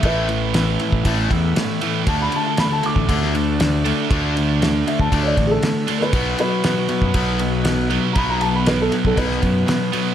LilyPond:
<<
  \new Staff \with { instrumentName = "Felt piano" } { \time 4/4 \key d \mixolydian \tempo 4 = 118 <b' e''>2 r2 | a''16 b''16 a''16 a''16 b''16 a''16 d'''4 r4. | r4. e''16 a''8 <cis'' d''>8 <gis' a'>4 <ais' b'>16~ | <ais' b'>8 <fis' b'>2. r8 |
<ais'' b''>16 ais''16 a''16 b''16 b'16 a'16 r16 a'16 b'2 | }
  \new Staff \with { instrumentName = "Tonewheel organ" } { \time 4/4 \key d \mixolydian <b e' a' b'>1 | <a d' fis' a'>1~ | <a d' fis' a'>1 | <b dis' fis' b'>1~ |
<b dis' fis' b'>1 | }
  \new Staff \with { instrumentName = "Overdriven electric guitar" } { \clef bass \time 4/4 \key d \mixolydian <a, e a>2.~ <a, e a>8 <a, e a>8 | <d a d'>2.~ <d a d'>8 <d a d'>8 | <d a d'>2.~ <d a d'>8 <d a d'>8 | <b, fis b>2.~ <b, fis b>8 <b, fis b>8 |
<b, fis b>2.~ <b, fis b>8 <b, fis b>8 | }
  \new Staff \with { instrumentName = "Distorted electric guitar" } { \clef bass \time 4/4 \key d \mixolydian <a, e a>8 <a, e>8 <a, e>8 <a, e>8 <a, e a>8 <a, e>8 <a, e>8 <a, e>8 | <d a d'>8 <d a>8 <d a>8 <d a>8 <d a d'>8 <d a>8 <d a>8 <d a>8 | <d a d'>8 <d a>8 <d a>8 <d a>8 <d a d'>8 <d a>8 <d a>8 <d a>8 | <b, fis b>8 <b, fis>8 <b, fis>8 <b, fis>8 <b, fis b>8 <b, fis>8 <b, fis>8 <b, fis>8 |
<b, fis b>8 <b, fis>8 <b, fis>8 <b, fis>8 <b, fis b>8 <b, fis>8 <b, fis>8 <b, fis>8 | }
  \new Staff \with { instrumentName = "Fingered electric bass" } { \clef bass \time 4/4 \key d \mixolydian a,,4.~ a,,16 a,,16 a,,8 e,8 r4 | d,8 r4 r16 a,,16 d,2 | d,4.~ d,16 d,16 d,8 a,,8 r4 | b,,8 r4 r16 fis,16 b,,2 |
b,,4.~ b,,16 b,,16 b,,8 fis,8 r4 | }
  \new DrumStaff \with { instrumentName = "Drums" } \drummode { \time 4/4 <bd cymr>8 cymr8 <cymr sn>8 cymr16 bd16 <bd cymr>8 <bd cymr>8 <cymr sn>8 cymr8 | <bd cymr>8 cymr8 <cymr sn>8 cymr16 bd16 <bd cymr>16 sn16 cymr8 <cymr sn>8 cymr8 | <bd cymr>8 cymr8 <cymr sn>8 cymr16 bd16 <bd cymr>8 <bd cymr>8 <cymr sn>8 cymr16 sn16 | <bd cymr>8 cymr8 <cymr sn>8 cymr16 bd16 <bd cymr>8 cymr8 <cymr sn>8 cymr8 |
<bd cymr>8 cymr8 <cymr sn>8 cymr16 bd16 <bd cymr>16 sn16 <bd cymr>8 <cymr sn>8 cymr8 | }
>>